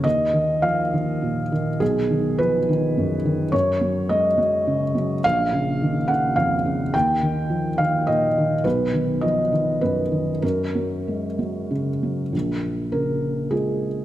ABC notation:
X:1
M:3/4
L:1/8
Q:1/4=103
K:Bbphr
V:1 name="Felt piano"
e2 f3 z | ^G2 =B4 | d2 e3 z | f3 g f2 |
=g3 f e2 | =B2 ^d2 B2 | B4 z2 | z2 B2 A2 |]
V:2 name="Felt piano" clef=bass
E,, E, F, E, B,, E, | =B,,, ^D, F, D, ^F,, D, | G,, G, A, G, D, G, | B,,, D, E, D, F,, D, |
E,, E, F, E, B,, E, | =B,,, ^D, F, D, ^F,, D, | G,, G, A, G, D, G, | B,,,2 D,2 [A,F]2 |]